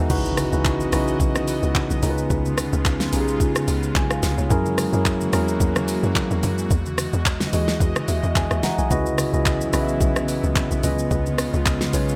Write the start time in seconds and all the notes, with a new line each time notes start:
Already playing: E3 B3 D#4 F#4 A#4 D#5 E5 F#5 G#5, swell
0.09 C#2 C#3 E3 B3 C#4 D#4 E4 F#4 B4 D#5, kick, crash, impact, low conga, shaker
0.25 high conga, shaker
0.37 cross-stick, open hi-hat, high conga, shaker
0.52 C#2 C#3 C#4 D#4 E4 F#4 B4, shaker
0.65 kick, clap, shaker
0.80 high conga, shaker
0.92 B1 C#3 C#4 D#4 E4 F#4 B4, cross-stick, open hi-hat, shaker
1.08 shaker
1.20 B1, kick, low conga, shaker
1.35 cross-stick, high conga, shaker
1.48 open hi-hat, shaker
1.63 C#2, shaker
1.75 kick, clap, high conga, low conga, shaker
1.90 B1, shaker
2.02 C#2 C#3 G#3 C#4 D#4 F4 A#4, open hi-hat, high conga, low conga, shaker
2.10 B4
2.18 shaker
2.30 C#2, kick, low conga, shaker
2.45 high conga, shaker
2.58 cross-stick, open hi-hat, high conga, shaker
2.73 C#2, shaker
2.85 kick, clap, shaker
3.00 snare, high conga, shaker
3.12 B1 C#3 C#4 D#4 F4 G4, open hi-hat, shaker
3.20 G#4
3.28 shaker
3.40 kick, low conga, shaker
3.56 cross-stick, high conga, shaker
3.68 C#2, open hi-hat, shaker
3.83 shaker
3.95 B1 G#5, kick, clap, high conga, low conga, shaker
4.11 F5, cross-stick, shaker
4.23 C#2, snare, open hi-hat, high conga, low conga, shaker
4.38 C#2 C#5, shaker
4.50 F#2 E3 F#3 A#3 C#4 E4 F#4 G#4 A#4, kick, low conga, shaker
4.66 high conga, shaker
4.78 cross-stick, open hi-hat, high conga, shaker
4.92 F#2 F#3 C#4 E4 G#4 A#4, shaker
5.05 kick, clap, shaker
5.21 high conga, shaker
5.32 E2 F#3 C#4 E4 G#4 A#4, cross-stick, open hi-hat, shaker
5.48 shaker
5.60 E2, kick, low conga, shaker
5.76 cross-stick, high conga, shaker
5.88 open hi-hat, shaker
6.03 F#2, shaker
6.15 kick, clap, high conga, low conga, shaker
6.31 E2, shaker
6.43 F#2, open hi-hat, high conga, low conga, shaker
6.58 shaker
6.70 E2 G#3 D#5, kick, low conga, shaker
6.86 high conga, shaker
6.98 cross-stick, open hi-hat, high conga, shaker
7.13 E2, shaker
7.26 kick, clap, shaker
7.40 snare, high conga, shaker
7.52 D#2 E3 E4 F#4 G#4 D#5, open hi-hat, shaker
7.68 snare, shaker
7.80 E2, kick, low conga, shaker
7.96 cross-stick, high conga, shaker
8.08 D#2 E5, open hi-hat, shaker
8.23 E2, shaker
8.36 E2 G#5, kick, clap, high conga, low conga, shaker
8.51 D#2 E5, cross-stick, shaker
8.63 F#5 A#5, snare, open hi-hat, high conga, low conga, shaker
8.78 B1 G#5, shaker
8.90 C#2 C#3 E3 F#3 B3 C#4 E4 F#4 B4 D#5, kick, low conga, shaker
9.06 high conga, shaker
9.18 cross-stick, open hi-hat, high conga, shaker
9.33 C#2 C#3 C#4 E4 F#4 B4 D#5, shaker
9.46 kick, clap, shaker
9.61 high conga, shaker
9.73 B1 C#3 C#4 E4 F#4 B4 D#5, cross-stick, open hi-hat, shaker
9.81 E5
9.88 shaker
10.01 B1, kick, low conga, shaker
10.16 cross-stick, high conga, shaker
10.28 open hi-hat, shaker
10.43 C#2, shaker
10.56 kick, clap, high conga, low conga, shaker
10.71 B1, shaker
10.83 C#2 C#3 G#3 C#4 F4 B4 D#5, open hi-hat, high conga, low conga, shaker
10.99 shaker
11.11 C#2, kick, low conga, shaker
11.26 high conga, shaker
11.38 cross-stick, open hi-hat, high conga, shaker
11.54 C#2, shaker
11.66 kick, clap, shaker
11.81 snare, high conga, shaker
11.93 B1 C#3 C#4 F4 B4 C#5, open hi-hat, shaker
12.09 shaker